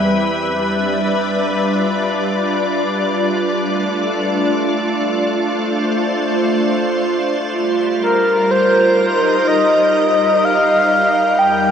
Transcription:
Already playing: ambient pad G3 B4 E5
0.47 ambient pad D4
0.75 ambient pad D5
1.39 ambient pad F4
3.64 ambient pad A3
5.39 ambient pad C5
7.48 ambient pad G3
8.03 soft synth lead A#4
8.16 ambient pad A#4
8.51 soft synth lead C5
8.81 ambient pad D#4
8.98 ambient pad D#5
9.47 soft synth lead D#5
10.45 soft synth lead F5
11.39 ambient pad E2, soft synth lead G5

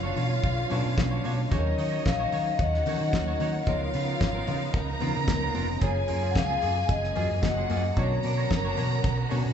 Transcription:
Already playing: fingered electric bass F#1, string section D3 F#3 B3 C#5, tine electric piano F#3 C#4 D4 B4, violin section F4 F5, vibraphone C#5
0.03 clean electric guitar D4 F#4 C#5
0.15 fingered electric bass B2, clean electric guitar D4 F#4 C#5, open hi-hat, low conga
0.31 muted clean electric guitar stroke
0.43 fingered electric bass B1, muted clean electric guitar stroke, kick, closed hi-hat
0.58 muted clean electric guitar stroke
0.70 fingered electric bass B2, tine electric piano F#3 C#4 D4 B4, clean electric guitar D4 F#4 C#5, open hi-hat, muted conga
0.84 fingered electric bass B2, muted clean electric guitar stroke
0.97 fingered electric bass B1, muted clean electric guitar stroke, kick, snare, closed hi-hat, high conga
1.11 clean electric guitar D4 F#4 C#5
1.24 fingered electric bass B2, clean electric guitar D4 F#4 C#5, open hi-hat, high conga
1.38 muted clean electric guitar stroke
1.51 fingered electric bass D#2, string section D#3 A#4, tine electric piano F#3 C#4 D#4 G#4, clean electric guitar D#4 F#4 C#5, violin section D#4 D#5, vibraphone C#5, kick, closed hi-hat, muted conga
1.59 tine electric piano A#4
1.78 fingered electric bass D#3, clean electric guitar D#4 F#4 D#5, open hi-hat
1.92 clean electric guitar D#4 F#4 C#5
2.05 fingered electric bass A#1, vibraphone F5, muted clean electric guitar stroke, kick, snare, closed hi-hat, high conga
2.20 clean electric guitar D#4 F#4 C#5
2.32 fingered electric bass D#3, clean electric guitar D#4 F#4 C#5, open hi-hat
2.47 muted clean electric guitar stroke
2.59 fingered electric bass D#2, violin section F#4 F#5, vibraphone D#5, muted clean electric guitar stroke, kick, closed hi-hat
2.74 muted clean electric guitar stroke, snare
2.86 fingered electric bass D#3, tine electric piano F3 C#4 D#4 A#4, clean electric guitar D#4 F#4 C#5, open hi-hat, muted conga, low conga
2.92 tine electric piano F#3
3.01 fingered electric bass D#3, muted clean electric guitar stroke
3.13 fingered electric bass D#2, muted clean electric guitar stroke, kick, snare, closed hi-hat, high conga
3.27 clean electric guitar D#4 F#4 C#5
3.40 fingered electric bass D#3, clean electric guitar D#4 F#4 C#5, open hi-hat, high conga
3.54 muted clean electric guitar stroke
3.62 vibraphone D#5
3.66 fingered electric bass C#2, string section C#3 F3 B3 D#4, tine electric piano F3 B3 D#4 G#4, clean electric guitar B3 F4 A#4, violin section F4 F5, vibraphone C#5, kick, closed hi-hat, muted conga
3.74 tine electric piano A#4
3.94 fingered electric bass C#3, clean electric guitar B3 F4 B4, open hi-hat, muted conga
4.08 clean electric guitar B3 F4 A#4
4.20 fingered electric bass G#1, muted clean electric guitar stroke, kick, snare, closed hi-hat, high conga
4.35 clean electric guitar B3 F4 A#4
4.47 fingered electric bass C#3, clean electric guitar B3 F4 A#4, open hi-hat, low conga
4.61 muted clean electric guitar stroke
4.74 fingered electric bass C#2, violin section A#4 A#5, muted clean electric guitar stroke, kick, closed hi-hat
4.89 muted clean electric guitar stroke
5.00 fingered electric bass C#3, tine electric piano F3 B3 D#4 A#4, clean electric guitar B3 F4 A#4, open hi-hat, muted conga, low conga
5.15 fingered electric bass C#3, muted clean electric guitar stroke
5.28 fingered electric bass C#2, muted clean electric guitar stroke, kick, snare, closed hi-hat, high conga
5.42 clean electric guitar B3 F4 A#4
5.54 fingered electric bass F1, clean electric guitar B3 F4 A#4, open hi-hat, high conga
5.68 muted clean electric guitar stroke
5.81 fingered electric bass F#1, tine electric piano F#3 A#3 F4 G#4, string section F#3 G#3 G#4, clean electric guitar A#3 F4 G#4, violin section G#4 G#5, vibraphone C#5, kick, closed hi-hat, muted conga
6.08 fingered electric bass F#2, clean electric guitar A#3 F4 A#4, open hi-hat, muted conga
6.22 clean electric guitar A#3 F4 G#4
6.31 vibraphone F#5, muted clean electric guitar stroke
6.35 fingered electric bass C#2, vibraphone F5, kick, snare, closed hi-hat, high conga
6.49 clean electric guitar A#3 F4 G#4
6.62 fingered electric bass F#2, clean electric guitar A#3 F4 G#4, open hi-hat
6.76 muted clean electric guitar stroke
6.89 fingered electric bass F#1, vibraphone D#5, kick, closed hi-hat
7.03 muted clean electric guitar stroke, snare
7.15 fingered electric bass F#2, tine electric piano F#3 A#3 F#4 G#4, clean electric guitar A#3 F4 G#4, open hi-hat, muted conga, low conga
7.30 fingered electric bass F#2, muted clean electric guitar stroke
7.43 fingered electric bass F#1, violin section F#4 F#5, muted clean electric guitar stroke, kick, snare, closed hi-hat, high conga
7.57 clean electric guitar A#3 F4 G#4
7.70 fingered electric bass F#2, clean electric guitar A#3 F4 G#4, open hi-hat, high conga
7.85 muted clean electric guitar stroke
7.96 fingered electric bass B1, tine electric piano D3 B3 C#4 F#4, string section D3 B3 C#4 F#4, clean electric guitar D4 F#4 C#5, violin section A#4 A#5, vibraphone C#5, kick, closed hi-hat, muted conga
8.23 fingered electric bass B2, clean electric guitar D4 F#4 D5, open hi-hat, muted conga
8.37 clean electric guitar D4 F#4 C#5
8.50 fingered electric bass F#1, muted clean electric guitar stroke, kick, snare, closed hi-hat, high conga
8.65 clean electric guitar D4 F#4 C#5
8.77 fingered electric bass B2, clean electric guitar D4 F#4 C#5, open hi-hat, low conga
8.91 muted clean electric guitar stroke
9.04 fingered electric bass B1, muted clean electric guitar stroke, kick, closed hi-hat
9.17 muted clean electric guitar stroke
9.29 fingered electric bass B2, tine electric piano D3 B3 C#4 F#4, clean electric guitar D4 F#4 C#5, open hi-hat, muted conga
9.44 fingered electric bass B2, muted clean electric guitar stroke

